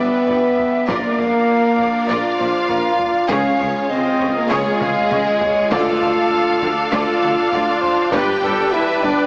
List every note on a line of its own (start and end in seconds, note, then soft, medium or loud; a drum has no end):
0.00 0.10 G1 medium
0.00 0.88 B3 loud
0.00 0.88 D4 medium
0.00 0.88 B4 medium
0.00 0.85 D5 medium
0.00 0.89 E5 medium
0.00 0.89 G5 medium
0.27 0.35 G1 medium
0.27 0.41 G1 medium
0.27 0.37 G2 medium
0.27 0.35 D5 medium
0.27 0.37 D5 medium
0.27 0.39 G5 medium
0.27 taiko low medium
0.59 taiko low medium
0.87 0.95 A#1 medium
0.87 1.00 A#1 medium
0.87 0.97 A#2 loud
0.87 2.07 A#3 loud
0.87 3.26 D4 medium
0.87 3.28 F4 medium
0.87 1.16 F4 medium
0.87 2.07 A#4 loud
0.87 1.17 A#4 medium
0.87 1.20 D5 medium
0.87 3.26 D5 medium
0.87 1.16 D5 loud
0.87 5.71 F5 loud
0.87 taiko loud
1.17 1.25 A#1 medium
1.17 1.30 A#1 medium
1.17 1.27 A#2 medium
1.17 1.27 A#4 medium
1.17 1.25 D5 medium
1.17 1.27 D5 medium
1.17 2.09 F5 loud
1.17 taiko low medium
1.78 1.86 A#1 medium
1.78 1.91 A#1 medium
1.78 1.88 A#2 medium
1.78 1.89 A#4 medium
1.78 1.88 D5 medium
1.78 1.89 D5 medium
1.78 taiko low medium
2.07 2.16 A#1 loud
2.07 2.21 A#1 medium
2.07 2.17 A#2 loud
2.07 2.37 F4 loud
2.07 3.30 F4 loud
2.07 2.37 A#4 medium
2.07 2.37 D5 medium
2.07 2.37 D5 loud
2.07 3.30 F5 loud
2.37 2.46 A#1 medium
2.37 2.52 A#1 medium
2.37 2.48 A#2 medium
2.37 2.70 C5 medium
2.37 2.47 D5 medium
2.37 2.49 D5 medium
2.42 2.50 A#4 medium
2.68 2.77 A#1 medium
2.68 2.82 A#1 medium
2.68 2.78 A#2 medium
2.68 3.00 A#4 medium
2.68 2.76 D5 medium
2.68 2.78 D5 medium
2.68 2.77 F5 medium
2.68 taiko low medium
2.99 3.27 D5 medium
2.99 taiko low medium
3.28 3.37 C#2 loud
3.28 3.42 C#2 loud
3.28 3.38 C#3 loud
3.28 3.90 C#4 loud
3.28 5.71 F4 loud
3.28 3.57 G#4 loud
3.28 5.71 G#4 loud
3.28 3.58 G#4 medium
3.28 3.58 C#5 loud
3.28 3.90 C#5 loud
3.28 3.67 F5 loud
3.28 taiko loud
3.59 3.68 C#2 medium
3.59 3.72 C#2 medium
3.59 3.69 C#3 medium
3.59 3.68 G#4 medium
3.59 3.68 C#5 medium
3.59 taiko low medium
3.88 4.35 C4 loud
3.88 4.36 C5 loud
3.88 4.52 D#5 loud
4.19 4.28 C#2 medium
4.19 4.33 C#2 medium
4.19 4.29 C#3 medium
4.19 4.30 G#4 medium
4.19 4.28 C#5 medium
4.19 4.29 C#5 medium
4.19 taiko low medium
4.36 4.51 A#3 loud
4.36 4.51 A#4 loud
4.49 4.59 C#2 loud
4.49 4.63 C#2 loud
4.49 4.59 C#3 loud
4.49 5.71 G#3 loud
4.49 4.78 G#4 loud
4.49 5.72 G#4 loud
4.49 4.78 C#5 loud
4.49 4.83 C#5 medium
4.80 4.93 C#2 medium
4.80 4.90 C#2 medium
4.80 4.89 C#3 medium
4.80 4.89 G#4 medium
4.80 4.88 C#5 medium
4.80 4.90 C#5 medium
4.80 5.12 F5 loud
4.80 taiko mid loud
5.10 5.19 C#2 medium
5.10 5.23 C#2 medium
5.10 5.20 C#3 medium
5.10 5.19 G#4 medium
5.10 5.19 C#5 medium
5.10 5.41 D#5 loud
5.10 5.18 F5 medium
5.10 taiko mid loud
5.41 5.71 C#5 medium
5.41 taiko low loud
5.70 5.78 D2 loud
5.70 5.83 D2 loud
5.70 6.58 D3 loud
5.70 5.80 D3 loud
5.70 9.27 D4 loud
5.70 5.99 F4 loud
5.70 6.73 F4 loud
5.70 5.99 A4 loud
5.70 6.90 A4 loud
5.70 8.13 A4 loud
5.70 5.99 D5 loud
5.70 9.27 D5 loud
5.70 6.89 F5 loud
5.70 8.10 F5 loud
5.70 taiko loud
6.01 6.09 D2 medium
6.01 6.14 D2 medium
6.01 6.10 D3 medium
6.01 6.10 A4 medium
6.01 6.09 D5 medium
6.01 6.10 D5 medium
6.01 taiko low medium
6.61 6.69 D2 loud
6.61 6.74 D2 medium
6.61 6.70 D3 medium
6.61 6.69 A4 medium
6.61 6.69 D5 medium
6.61 6.70 D5 medium
6.61 taiko low medium
6.90 7.00 D2 loud
6.90 7.05 D2 loud
6.90 7.00 D3 loud
6.90 8.09 F4 loud
6.90 7.20 F4 loud
6.90 7.52 A4 loud
6.90 7.20 A4 loud
6.90 7.21 A4 loud
6.90 7.21 D5 loud
6.90 8.10 F5 loud
7.22 7.30 D2 medium
7.22 7.35 D2 medium
7.22 7.31 D3 medium
7.22 7.30 A4 medium
7.22 7.31 A4 medium
7.22 7.30 D5 medium
7.22 7.31 D5 medium
7.51 7.60 D2 medium
7.51 7.64 D2 medium
7.51 7.60 D3 medium
7.51 7.61 A4 medium
7.51 7.83 D5 loud
7.51 7.61 D5 loud
7.51 7.62 D5 loud
7.51 7.62 F5 medium
7.51 taiko low medium
7.81 8.12 C5 loud
7.81 taiko low medium
8.11 8.24 G1 loud
8.11 8.21 G1 loud
8.11 8.21 G2 loud
8.11 8.71 G4 loud
8.11 8.41 G4 loud
8.11 9.27 B4 loud
8.11 8.41 B4 loud
8.11 8.42 B4 loud
8.11 8.41 B4 loud
8.11 8.41 D5 loud
8.11 8.71 G5 loud
8.11 9.27 G5 loud
8.11 taiko loud
8.42 8.50 G1 loud
8.42 8.55 G1 medium
8.42 8.51 G2 medium
8.42 8.72 A4 loud
8.42 8.52 B4 medium
8.42 8.52 D5 medium
8.42 taiko low medium
8.72 9.03 E4 loud
8.72 9.27 B4 loud
8.72 9.03 E5 loud
9.02 9.15 G1 medium
9.02 9.10 G1 medium
9.02 9.12 G2 medium
9.02 9.27 D4 loud
9.02 9.10 B4 medium
9.02 9.12 B4 medium
9.02 9.10 D5 medium
9.02 9.11 D5 medium
9.02 9.27 D5 loud
9.02 taiko low medium